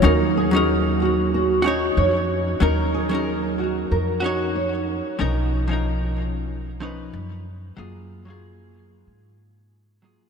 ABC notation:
X:1
M:4/4
L:1/16
Q:"Swing 16ths" 1/4=93
K:Ebm
V:1 name="Nylon-string guitar"
B2 A4 G2 G2 E2 d4 | B2 A4 G2 B2 G2 d4 | z16 | z16 |]
V:2 name="Hollow-body jazz guitar"
[G,DEB]3 [G,DEB]6- [G,DEB] [DEGd]6 | [G,DEB]3 [G,DEB]6- [G,DEB] [DEGd]6 | [^E,^C^D^A]3 [E,CDA]6- [E,CDA] [E,CD=B]4 z2 | [G,B,FA]3 [G,B,FA]6- [G,B,FA] z4 [G,B,FA]2 |]
V:3 name="Upright bass" clef=bass
E,,12 F,,4 | E,,8 F,,6 z2 | =B,,,12 ^F,,4 | G,,8 A,,6 z2 |]